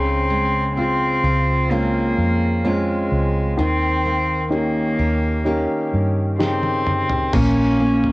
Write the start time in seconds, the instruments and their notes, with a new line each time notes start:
Already playing: fingered electric bass C#2, grand piano C#3, steel-string acoustic guitar C#3 G#3 C4 F4, cello C4
0.30 steel-string acoustic guitar G#3
0.77 grand piano G#3 C4 F4, steel-string acoustic guitar C4, cello C4
1.24 fingered electric bass C#2, steel-string acoustic guitar F4
1.70 steel-string acoustic guitar G#3 C4 F4, cello A#3, grand piano C4 C#4 F4
2.18 fingered electric bass F2
2.64 steel-string acoustic guitar G#3 C4 F4, cello G#3, grand piano C4 C#4 F4
3.12 fingered electric bass C#2
3.58 fingered electric bass D#2, grand piano D#3, steel-string acoustic guitar D#3, cello C4
4.05 steel-string acoustic guitar A#3
4.50 grand piano C#4 D#4 G4, steel-string acoustic guitar C#4
4.55 cello A#3
4.99 fingered electric bass D#2, steel-string acoustic guitar G4
5.45 steel-string acoustic guitar A#3 C#4 G4, grand piano C#4 D#4 G4
5.94 fingered electric bass G2
6.39 grand piano C#3 D#4 G4, steel-string acoustic guitar A#3 G4, cello C4, snare
6.63 high tom
6.87 mid tom
7.09 floor tom
7.33 fingered electric bass A#1, steel-string acoustic guitar A#2 F4, grand piano A#3, cello C#4, kick, floor tom, crash
7.80 grand piano A#3, steel-string acoustic guitar C#4
8.04 floor tom